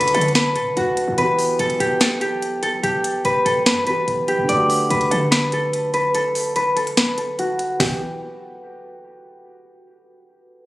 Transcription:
Already playing: C2 D3 A3 D4 F#4 A4 B4
0.01 closed hi-hat
0.08 closed hi-hat
0.14 D3 A4, closed hi-hat
0.21 closed hi-hat
0.28 closed hi-hat
0.35 B4, snare, closed hi-hat
0.56 A2 A4, closed hi-hat
0.66 D3
0.77 D2 F#4, closed hi-hat
0.97 closed hi-hat
1.08 D2
1.12 E3
1.18 E1 B3 B4, closed hi-hat
1.24 G4
1.39 E2, open hi-hat
1.59 E1 A4, closed hi-hat
1.70 closed hi-hat
1.80 E1 G4, closed hi-hat
2.01 A4, snare, closed hi-hat
2.21 G4, closed hi-hat
2.42 closed hi-hat
2.63 A4, closed hi-hat
2.83 E1 G4, closed hi-hat
3.04 closed hi-hat
3.25 E1 B4, closed hi-hat
3.45 E1 A4, closed hi-hat
3.66 G2 B4, snare, closed hi-hat
3.84 E3 B3 B4, closed hi-hat
3.90 G4
4.08 E1, closed hi-hat
4.28 D1 G4, closed hi-hat
4.39 E1
4.43 D3
4.49 D2 A3 D5, closed hi-hat
4.55 F#4
4.70 open hi-hat
4.90 D2 B4, closed hi-hat
5.01 closed hi-hat
5.11 D3 A4, closed hi-hat
5.31 B4, snare, closed hi-hat
5.52 A4, closed hi-hat
5.73 closed hi-hat
5.94 B4, closed hi-hat
6.15 A4, closed hi-hat
6.35 open hi-hat
6.56 B4, closed hi-hat
6.76 A4, closed hi-hat
6.87 closed hi-hat
6.97 B4, snare, closed hi-hat
7.18 A4, closed hi-hat
7.39 F#4, closed hi-hat
7.59 closed hi-hat
7.80 E1 E3 B3 G4, kick, snare, open hi-hat

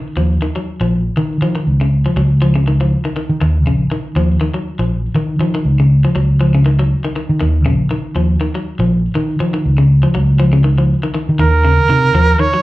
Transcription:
Already playing: D#3
0.17 D#2 F3
0.42 D#3
0.56 F#3
0.81 A#1 F3
1.17 D#3
1.42 D#3 F3
1.55 D#3
1.67 C#2
1.81 C#3
2.06 F3
2.16 C#2 F#3
2.42 F3
2.56 C#3
2.68 D#3
2.81 F3
3.05 D#3
3.16 D#3
3.29 D#3
3.41 D#2, muted clean electric guitar stroke
3.66 A#1 C#3
3.92 D#3
4.16 D#2 F3
4.41 D#3
4.54 F#3
4.79 A#1 F3
5.15 D#3
5.39 D#3 F3
5.55 D#3
5.65 C#2
5.80 C#3
6.05 F3
6.15 C#2 F#3
6.41 F3
6.55 C#3
6.66 D#3
6.79 F#3
7.05 D#3
7.16 D#3
7.29 D#3
7.41 D#2 D#3
7.66 A#1 C#3
7.91 D#3
8.16 D#2 F3
8.41 D#3
8.55 F#3
8.79 A#1 F3
9.15 D#3
9.40 D#3 F3
9.54 D#3
9.66 C#2
9.78 C#3
10.03 F3
10.15 C#2 F#3
10.40 F3
10.53 C#3
10.64 D#3
10.78 F3
11.03 D#3
11.14 D#3
11.29 D#3
11.39 D#2 D#3 A#4
11.64 C#3
11.89 C3 D#3
12.14 D#2 F3
12.39 D#3 C#5
12.54 F#3

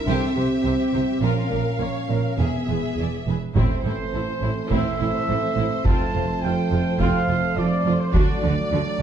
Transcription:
Already playing: E5
0.07 C2 C3 C4 G4 A4 C5
0.36 C2 C3 G4 C5
0.65 C2 C3 C5 E5
0.93 C2 C3 C5
1.21 A#1 A#2 C#4 F4 A#4 F5
1.51 A#1 A#2 A#4
1.79 A#1 A#2 A#4 C#5
2.09 A#1 A#2 A#4
2.38 E1 E2 B3 G#4 E5
2.68 E1 E2 G#4 B4
2.98 E1 E2 G#4 D5
3.27 E1 E2 G#4 B4
3.55 A1 A2 E3 A3 C4 E4 A4 C5, taiko
3.85 A1 A2 E4
4.13 A1 A2 E4 A4
4.42 A1 A2 E4
4.71 A1 A2 C4 E4 E5, taiko
4.99 A1 A2 E4
5.28 A1 A2 E4 A4
5.56 A1 A2 E4
5.85 F1 F2 F3 C4 F4 A5, taiko
6.14 F1 F2 F4
6.42 F1 F2 F4 A4 G5
6.71 F1 F2 F4
6.99 F1 F2 C4 F4 F5, taiko
7.27 F1 F2 F4
7.56 F1 F2 F4 A4 D5
7.85 F1 F2 F4
8.00 C5
8.13 D2 D3 D4 F#4 A4 D5, taiko
8.18 F#3 A3
8.43 D2 D3 F#4
8.71 D2 D3 F#4 A4

